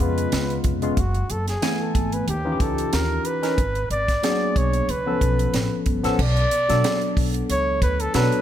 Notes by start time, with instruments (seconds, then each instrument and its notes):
Already playing: tine electric piano C#3 G#3 B3 F4
0.00 upright bass F2, flugelhorn B4, kick, closed hi-hat
0.18 closed hi-hat
0.32 upright bass C#2, snare, closed hi-hat
0.50 closed hi-hat
0.64 upright bass F1, kick, closed hi-hat
0.82 tine electric piano C#3 G#3 B3 F4, closed hi-hat
0.97 upright bass F#1, flugelhorn F#4, kick, closed hi-hat
1.15 closed hi-hat
1.30 upright bass F#1, flugelhorn A4, closed hi-hat
1.48 flugelhorn G#4, snare, closed hi-hat
1.62 tine electric piano E3 A3 B3 G#5, snare, closed hi-hat
1.74 flugelhorn G#4
1.81 flugelhorn A4
1.95 upright bass G#1, kick, closed hi-hat
2.12 flugelhorn B4, closed hi-hat
2.27 upright bass D#2, flugelhorn G4, closed hi-hat
2.44 tine electric piano E3 C#4 D#4 F4
2.52 tine electric piano G4
2.60 upright bass C#2, flugelhorn A4, kick, closed hi-hat
2.78 closed hi-hat
2.93 upright bass D#2, flugelhorn A#4, snare, closed hi-hat
3.25 flugelhorn B4, closed hi-hat
3.42 tine electric piano E3 C#4 D#4 A#4, snare, closed hi-hat
3.58 upright bass G#1, kick, closed hi-hat
3.75 closed hi-hat
3.90 upright bass G#1, flugelhorn D5, closed hi-hat
4.08 kick, snare, closed hi-hat
4.23 tine electric piano F#3 A#3 D4 G#4, snare, closed hi-hat
4.30 tine electric piano B3
4.56 upright bass B1, flugelhorn C#5, kick, closed hi-hat
4.73 closed hi-hat
4.88 upright bass C#2, flugelhorn B4, closed hi-hat
5.06 tine electric piano F3 B3 C#4 A4
5.21 upright bass B1, kick, closed hi-hat
5.39 closed hi-hat
5.54 upright bass A1, snare, closed hi-hat
5.86 upright bass G1, kick, closed hi-hat
6.04 upright bass A1, tine electric piano F3 B3 C#4 A4, snare, closed hi-hat
6.19 upright bass B1, flugelhorn D5, kick, crash
6.36 closed hi-hat
6.51 closed hi-hat
6.69 upright bass B2, tine electric piano F#3 B3 D4 A4, snare, closed hi-hat
6.84 snare, closed hi-hat
7.01 closed hi-hat
7.17 upright bass B1, kick, open hi-hat
7.34 closed hi-hat
7.49 upright bass C#2, flugelhorn C#5, closed hi-hat
7.82 upright bass D2, flugelhorn B4, kick, closed hi-hat
8.00 flugelhorn A4, closed hi-hat
8.14 upright bass B2, tine electric piano F#3 B3 D4 A4, flugelhorn B4, snare, closed hi-hat
8.32 closed hi-hat